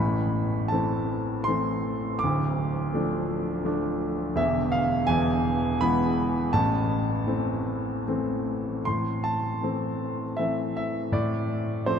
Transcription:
0.00 2.19 A1 medium
0.00 2.19 A2 medium
0.00 0.66 B5 medium
0.68 1.46 E3 soft
0.68 1.46 A3 soft
0.68 1.46 C4 medium
0.68 1.49 A5 medium
1.44 2.20 A3 soft
1.44 2.17 C6 medium
1.48 2.20 E3 soft
1.48 2.20 C4 medium
2.19 3.24 D6 medium
2.23 4.33 D1 medium
2.23 4.33 D2 medium
2.94 3.63 F3 medium
2.94 3.63 A3 soft
2.94 3.64 D4 medium
3.65 4.34 F3 soft
3.65 4.34 A3 soft
3.65 4.34 D4 medium
4.35 5.03 E1 medium
4.35 5.05 E2 medium
4.35 4.73 E5 medium
4.72 5.09 F5 medium
5.07 6.49 E1 medium
5.07 6.49 E2 medium
5.07 5.76 G#5 loud
5.81 6.51 E3 medium
5.81 6.52 G#3 soft
5.81 6.52 B3 medium
5.81 6.55 B5 loud
6.53 8.82 A1 medium
6.53 8.82 A2 medium
6.53 8.03 A5 medium
7.27 8.04 E3 soft
7.27 8.04 A3 soft
7.27 8.04 C4 medium
8.08 8.84 E3 soft
8.08 8.84 A3 soft
8.08 8.84 C4 medium
8.85 11.10 A2 medium
8.85 9.21 C6 medium
9.24 10.34 A5 medium
9.63 10.23 E3 soft
9.63 10.23 A3 soft
9.63 10.24 C4 soft
10.37 10.99 E3 soft
10.37 10.99 A3 soft
10.37 10.99 C4 soft
10.37 10.75 E5 medium
10.77 11.15 E5 medium
11.12 11.99 A2 medium
11.12 11.90 D5 medium
11.86 11.99 F3 soft
11.86 11.99 A3 soft
11.86 11.99 C4 medium
11.86 11.99 C5 medium

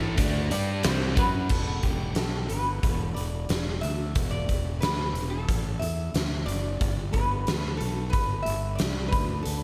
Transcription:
0.00 0.16 A1 medium
0.00 0.17 A2 loud
0.00 0.17 E3 loud
0.00 0.16 A3 loud
0.17 0.49 D2 medium
0.17 0.50 D3 medium
0.17 0.50 A3 loud
0.17 0.50 D4 loud
0.17 kick medium
0.17 closed hi-hat loud
0.51 0.82 G2 medium
0.51 0.83 G3 medium
0.51 0.84 D4 loud
0.51 0.84 G4 medium
0.51 0.84 D5 medium
0.51 closed hi-hat medium
0.83 1.15 C2 medium
0.83 1.15 C3 medium
0.83 1.16 G3 loud
0.83 1.16 C4 loud
0.83 1.18 C5 medium
0.83 snare loud
0.83 closed hi-hat medium
1.16 1.48 F#2 medium
1.16 1.49 F#3 medium
1.16 1.49 C#4 loud
1.16 1.49 F#4 loud
1.16 1.50 B4 medium
1.16 kick loud
1.16 closed hi-hat medium
1.49 1.81 E1 medium
1.49 1.81 A4 loud
1.49 kick loud
1.49 crash medium
1.83 2.14 E1 medium
1.83 2.16 G4 medium
1.83 kick medium
1.83 closed hi-hat soft
2.15 2.48 B1 medium
2.15 2.48 A4 medium
2.15 snare loud
2.15 closed hi-hat medium
2.49 2.81 G1 medium
2.49 3.01 B4 medium
2.49 closed hi-hat medium
2.83 3.14 E1 medium
2.83 kick loud
2.83 closed hi-hat medium
3.01 3.18 A4 medium
3.14 3.47 E1 medium
3.14 3.78 D5 medium
3.14 closed hi-hat medium
3.49 3.80 E1 medium
3.49 snare loud
3.49 closed hi-hat medium
3.81 4.14 D2 medium
3.81 4.28 E5 loud
3.81 closed hi-hat medium
4.15 4.46 E1 medium
4.15 kick loud
4.15 closed hi-hat medium
4.31 4.83 D5 medium
4.49 4.80 E1 medium
4.49 kick medium
4.49 closed hi-hat medium
4.80 5.13 D2 medium
4.80 5.27 B4 medium
4.80 snare loud
4.80 closed hi-hat medium
5.14 5.45 E1 medium
5.14 closed hi-hat medium
5.30 5.82 A4 medium
5.49 5.79 A1 medium
5.49 kick medium
5.49 closed hi-hat medium
5.79 6.12 E2 medium
5.79 6.43 E5 medium
5.79 closed hi-hat medium
6.14 6.45 D2 medium
6.14 snare loud
6.14 closed hi-hat medium
6.46 6.78 F#1 medium
6.46 7.09 D5 loud
6.46 closed hi-hat medium
6.81 7.12 G1 medium
6.81 kick medium
6.81 closed hi-hat medium
7.13 7.45 G1 medium
7.13 7.76 B4 medium
7.13 kick medium
7.13 closed hi-hat soft
7.47 7.78 D2 medium
7.47 snare medium
7.47 closed hi-hat medium
7.77 8.11 B1 medium
7.77 8.09 A4 medium
7.77 closed hi-hat soft
8.10 8.46 B4 medium
8.10 kick loud
8.10 closed hi-hat medium
8.14 8.44 G1 medium
8.43 8.75 E5 medium
8.43 closed hi-hat medium
8.47 8.77 G1 medium
8.75 9.12 D5 medium
8.75 closed hi-hat medium
8.80 9.11 C2 medium
8.80 snare loud
9.08 9.42 B4 medium
9.13 9.43 D2 medium
9.13 kick medium
9.13 closed hi-hat medium
9.42 9.63 A4 medium
9.42 closed hi-hat medium
9.47 9.63 D2 medium

